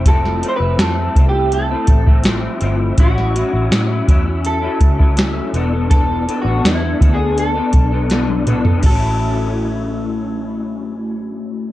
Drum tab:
CC |----------------|----------------|----------------|x---------------|
HH |x-x-x-x-x-x-x-x-|x-x-x-x-x-x-x-x-|x-x-x-x-x-x-x-x-|----------------|
SD |-o--o-------o---|-o--o-------o---|----o-------o---|----------------|
T1 |----------------|----------------|-------------o--|----------------|
T2 |----------------|----------------|--------------o-|----------------|
FT |----------------|----------------|---------------o|----------------|
BD |o-----o---oo----|o-----o---oo----|o-----o---o-----|o---------------|